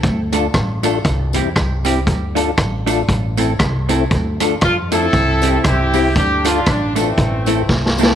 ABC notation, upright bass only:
X:1
M:4/4
L:1/8
Q:"Swing" 1/4=117
K:Dm
V:1 name="Upright bass" clef=bass
D,,2 A,,,2 C,, E,, C,,2 | D,,2 A,,,2 A,,,2 C,,2 | D,,2 F,,2 C,,2 C,,2 | D,,2 A,,,2 A,,,2 C,,2 |]